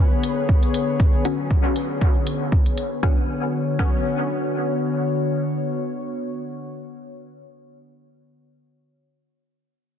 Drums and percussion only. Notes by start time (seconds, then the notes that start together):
0.24 closed hi-hat
0.49 kick
0.63 closed hi-hat
0.74 closed hi-hat
1.00 kick
1.25 closed hi-hat
1.51 kick
1.76 closed hi-hat
2.01 kick
2.27 closed hi-hat
2.52 kick
2.66 closed hi-hat
2.78 closed hi-hat
3.03 kick
3.79 kick